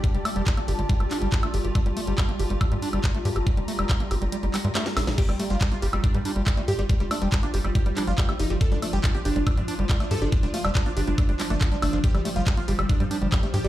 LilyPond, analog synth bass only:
\new Staff \with { instrumentName = "Analog synth bass" } { \clef bass \time 4/4 \key g \minor \tempo 4 = 140 r16 f,,16 r16 f,,16 r8 g,,16 g,,16 r16 g,,16 r16 g,,16 r8 g,,16 g,,16 | r16 g,,16 r16 g,,16 r8 g,,16 g,,16 r16 g,16 r16 g,,16 r8 g,16 g,,16 | r16 f,,16 r16 f,,16 r8 g,,16 g,,16 r16 g,,16 r16 g,16 r8 bes,,16 bes,,16 | r16 g,,16 r16 g,,16 r8 g,,16 g,,16 r16 g,16 r16 g,,16 r8 g,16 g,,16 |
r16 f,,16 r16 f,,16 r8 g,,16 g,,16 r16 g,,16 r16 g,,16 r8 g,,16 g,,16 | r16 g,,16 r16 g,,16 r8 g,,16 g,,16 r16 g,16 r16 g,,16 r8 g,16 g,,16 | r16 f,,16 r16 f,,16 r8 g,,16 g,,16 r16 g,,16 r16 g,,16 r8 g,,16 g,,16 | r16 g,,16 r16 g,,16 r8 g,,16 g,,16 r16 g,16 r16 g,,16 r8 g,16 g,,16 | }